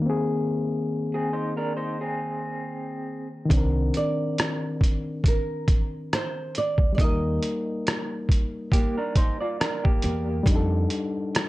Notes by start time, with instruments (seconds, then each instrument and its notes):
Already playing: reed electric piano D#3
0.02 reed electric piano A#3 C4
0.10 reed electric piano G#4
1.14 clean electric guitar C4 G#4
1.33 clean electric guitar D#4 C5
1.57 clean electric guitar D4 A#4
1.77 clean electric guitar D#4 C5
2.01 clean electric guitar C4 G#4
3.45 reed electric piano D#3 C4
3.50 upright bass C2, reed electric piano D4, kick, closed hi-hat
3.57 reed electric piano A#4
3.94 nylon-string guitar D5, closed hi-hat
4.38 cross-stick, closed hi-hat
4.81 kick, closed hi-hat
5.24 kick, closed hi-hat
5.28 nylon-string guitar A#4
5.68 kick, closed hi-hat
6.13 nylon-string guitar C5, cross-stick, closed hi-hat
6.55 nylon-string guitar D5, closed hi-hat
6.78 upright bass D2, kick
6.93 reed electric piano G3 A#3, nylon-string guitar D5
6.98 upright bass D#2, reed electric piano D#4, nylon-string guitar D#5, kick, closed hi-hat
7.04 reed electric piano A#4
7.43 closed hi-hat
7.87 cross-stick, closed hi-hat
8.29 kick, closed hi-hat
8.72 clean electric guitar A#3 G4, kick, closed hi-hat
8.98 clean electric guitar D4 A#4
9.16 clean electric guitar D#4 C5, kick, closed hi-hat
9.41 clean electric guitar F4 D5
9.60 clean electric guitar D4 A#4, cross-stick, closed hi-hat
9.84 clean electric guitar A#3 G4, kick
10.02 upright bass E2, closed hi-hat
10.43 upright bass F2, reed electric piano G3, kick, closed hi-hat
10.47 reed electric piano D4 D#4
10.55 reed electric piano A4
10.90 closed hi-hat
11.35 cross-stick, closed hi-hat